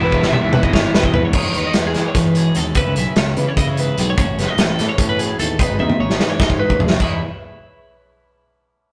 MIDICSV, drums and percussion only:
0, 0, Header, 1, 2, 480
1, 0, Start_track
1, 0, Key_signature, 4, "major"
1, 0, Tempo, 404858
1, 1586, Time_signature, 7, 3, 24, 8
1, 10578, End_track
2, 0, Start_track
2, 0, Title_t, "Drums"
2, 147, Note_on_c, 9, 36, 71
2, 265, Note_off_c, 9, 36, 0
2, 271, Note_on_c, 9, 38, 59
2, 389, Note_on_c, 9, 47, 79
2, 390, Note_off_c, 9, 38, 0
2, 508, Note_off_c, 9, 47, 0
2, 626, Note_on_c, 9, 47, 96
2, 744, Note_off_c, 9, 47, 0
2, 749, Note_on_c, 9, 36, 84
2, 867, Note_off_c, 9, 36, 0
2, 871, Note_on_c, 9, 36, 84
2, 889, Note_on_c, 9, 38, 95
2, 989, Note_off_c, 9, 36, 0
2, 1007, Note_off_c, 9, 38, 0
2, 1120, Note_on_c, 9, 38, 98
2, 1227, Note_on_c, 9, 36, 91
2, 1239, Note_off_c, 9, 38, 0
2, 1346, Note_off_c, 9, 36, 0
2, 1348, Note_on_c, 9, 43, 98
2, 1466, Note_off_c, 9, 43, 0
2, 1577, Note_on_c, 9, 49, 118
2, 1583, Note_on_c, 9, 36, 112
2, 1696, Note_off_c, 9, 49, 0
2, 1701, Note_off_c, 9, 36, 0
2, 1824, Note_on_c, 9, 42, 71
2, 1942, Note_off_c, 9, 42, 0
2, 2057, Note_on_c, 9, 42, 84
2, 2064, Note_on_c, 9, 38, 95
2, 2176, Note_off_c, 9, 42, 0
2, 2183, Note_off_c, 9, 38, 0
2, 2305, Note_on_c, 9, 42, 72
2, 2312, Note_on_c, 9, 38, 33
2, 2423, Note_off_c, 9, 42, 0
2, 2431, Note_off_c, 9, 38, 0
2, 2546, Note_on_c, 9, 42, 97
2, 2547, Note_on_c, 9, 36, 105
2, 2553, Note_on_c, 9, 38, 37
2, 2665, Note_off_c, 9, 42, 0
2, 2666, Note_off_c, 9, 36, 0
2, 2672, Note_off_c, 9, 38, 0
2, 2785, Note_on_c, 9, 42, 71
2, 2904, Note_off_c, 9, 42, 0
2, 3020, Note_on_c, 9, 42, 68
2, 3138, Note_off_c, 9, 42, 0
2, 3257, Note_on_c, 9, 42, 88
2, 3265, Note_on_c, 9, 36, 110
2, 3376, Note_off_c, 9, 42, 0
2, 3383, Note_off_c, 9, 36, 0
2, 3508, Note_on_c, 9, 42, 63
2, 3627, Note_off_c, 9, 42, 0
2, 3746, Note_on_c, 9, 42, 76
2, 3753, Note_on_c, 9, 38, 103
2, 3864, Note_off_c, 9, 42, 0
2, 3871, Note_off_c, 9, 38, 0
2, 3992, Note_on_c, 9, 42, 61
2, 4111, Note_off_c, 9, 42, 0
2, 4232, Note_on_c, 9, 36, 111
2, 4235, Note_on_c, 9, 42, 95
2, 4351, Note_off_c, 9, 36, 0
2, 4353, Note_off_c, 9, 42, 0
2, 4475, Note_on_c, 9, 42, 67
2, 4593, Note_off_c, 9, 42, 0
2, 4714, Note_on_c, 9, 42, 70
2, 4833, Note_off_c, 9, 42, 0
2, 4952, Note_on_c, 9, 36, 120
2, 4954, Note_on_c, 9, 42, 93
2, 5071, Note_off_c, 9, 36, 0
2, 5072, Note_off_c, 9, 42, 0
2, 5200, Note_on_c, 9, 42, 64
2, 5208, Note_on_c, 9, 38, 33
2, 5319, Note_off_c, 9, 42, 0
2, 5326, Note_off_c, 9, 38, 0
2, 5431, Note_on_c, 9, 42, 86
2, 5438, Note_on_c, 9, 38, 114
2, 5549, Note_off_c, 9, 42, 0
2, 5557, Note_off_c, 9, 38, 0
2, 5677, Note_on_c, 9, 42, 77
2, 5684, Note_on_c, 9, 38, 37
2, 5795, Note_off_c, 9, 42, 0
2, 5802, Note_off_c, 9, 38, 0
2, 5908, Note_on_c, 9, 42, 114
2, 5909, Note_on_c, 9, 36, 116
2, 6026, Note_off_c, 9, 42, 0
2, 6027, Note_off_c, 9, 36, 0
2, 6156, Note_on_c, 9, 42, 76
2, 6275, Note_off_c, 9, 42, 0
2, 6394, Note_on_c, 9, 42, 80
2, 6512, Note_off_c, 9, 42, 0
2, 6630, Note_on_c, 9, 36, 106
2, 6637, Note_on_c, 9, 42, 100
2, 6749, Note_off_c, 9, 36, 0
2, 6756, Note_off_c, 9, 42, 0
2, 6868, Note_on_c, 9, 48, 55
2, 6987, Note_off_c, 9, 48, 0
2, 6990, Note_on_c, 9, 48, 61
2, 7108, Note_off_c, 9, 48, 0
2, 7233, Note_on_c, 9, 38, 61
2, 7351, Note_off_c, 9, 38, 0
2, 7353, Note_on_c, 9, 38, 76
2, 7471, Note_off_c, 9, 38, 0
2, 7584, Note_on_c, 9, 36, 119
2, 7592, Note_on_c, 9, 38, 84
2, 7703, Note_off_c, 9, 36, 0
2, 7705, Note_on_c, 9, 36, 87
2, 7711, Note_off_c, 9, 38, 0
2, 7823, Note_off_c, 9, 36, 0
2, 7943, Note_on_c, 9, 36, 91
2, 8062, Note_off_c, 9, 36, 0
2, 8063, Note_on_c, 9, 43, 99
2, 8182, Note_off_c, 9, 43, 0
2, 8183, Note_on_c, 9, 38, 89
2, 8296, Note_on_c, 9, 49, 86
2, 8301, Note_off_c, 9, 38, 0
2, 8301, Note_on_c, 9, 36, 102
2, 8414, Note_off_c, 9, 49, 0
2, 8420, Note_off_c, 9, 36, 0
2, 10578, End_track
0, 0, End_of_file